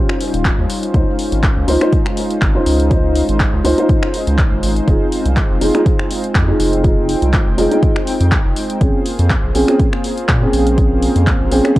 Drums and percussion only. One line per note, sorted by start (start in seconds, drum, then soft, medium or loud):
0.09 finger snap medium
0.21 open hi-hat loud
0.34 closed hi-hat medium
0.45 kick loud
0.45 clap loud
0.45 closed hi-hat medium
0.70 open hi-hat loud
0.83 closed hi-hat medium
0.94 kick loud
0.94 closed hi-hat soft
1.19 open hi-hat loud
1.32 closed hi-hat medium
1.43 kick loud
1.43 clap loud
1.43 closed hi-hat soft
1.68 open hi-hat loud
1.81 finger snap medium
1.81 closed hi-hat medium
1.93 kick loud
1.93 closed hi-hat soft
2.06 finger snap medium
2.17 open hi-hat loud
2.31 closed hi-hat medium
2.42 finger snap medium
2.42 kick loud
2.42 clap loud
2.42 closed hi-hat soft
2.66 open hi-hat loud
2.80 closed hi-hat medium
2.91 kick loud
2.91 closed hi-hat soft
3.15 open hi-hat loud
3.29 closed hi-hat medium
3.40 kick loud
3.40 clap loud
3.40 closed hi-hat soft
3.65 open hi-hat loud
3.78 closed hi-hat medium
3.89 kick loud
3.89 closed hi-hat soft
4.03 finger snap medium
4.14 open hi-hat loud
4.27 closed hi-hat medium
4.38 kick loud
4.38 clap loud
4.38 closed hi-hat soft
4.63 open hi-hat loud
4.76 closed hi-hat medium
4.88 kick loud
4.88 closed hi-hat soft
5.12 open hi-hat loud
5.26 closed hi-hat medium
5.37 kick loud
5.37 clap loud
5.37 closed hi-hat soft
5.61 open hi-hat loud
5.75 finger snap medium
5.75 closed hi-hat medium
5.86 kick loud
5.86 closed hi-hat soft
5.99 finger snap medium
6.11 open hi-hat loud
6.24 closed hi-hat medium
6.35 finger snap medium
6.35 kick loud
6.35 clap loud
6.35 closed hi-hat soft
6.60 open hi-hat loud
6.73 closed hi-hat medium
6.84 kick loud
6.84 closed hi-hat medium
7.09 open hi-hat loud
7.22 closed hi-hat medium
7.34 kick loud
7.34 clap loud
7.34 closed hi-hat medium
7.58 open hi-hat loud
7.71 closed hi-hat medium
7.83 kick loud
7.83 closed hi-hat soft
7.96 finger snap medium
8.07 open hi-hat loud
8.21 closed hi-hat medium
8.32 kick loud
8.32 clap loud
8.32 closed hi-hat medium
8.56 open hi-hat loud
8.70 closed hi-hat medium
8.81 kick loud
8.81 closed hi-hat medium
9.06 open hi-hat loud
9.19 closed hi-hat medium
9.30 kick loud
9.30 clap loud
9.30 closed hi-hat medium
9.55 open hi-hat loud
9.68 finger snap medium
9.68 closed hi-hat medium
9.79 kick loud
9.79 closed hi-hat medium
9.93 finger snap medium
10.04 open hi-hat loud
10.18 closed hi-hat medium
10.29 finger snap medium
10.29 kick loud
10.29 clap loud
10.29 closed hi-hat medium
10.53 open hi-hat loud
10.67 closed hi-hat medium
10.78 kick loud
10.78 closed hi-hat medium
11.02 open hi-hat medium
11.16 closed hi-hat medium
11.27 kick loud
11.27 clap loud
11.27 closed hi-hat medium
11.52 open hi-hat loud
11.65 finger snap medium
11.65 closed hi-hat medium
11.76 kick loud
11.76 closed hi-hat medium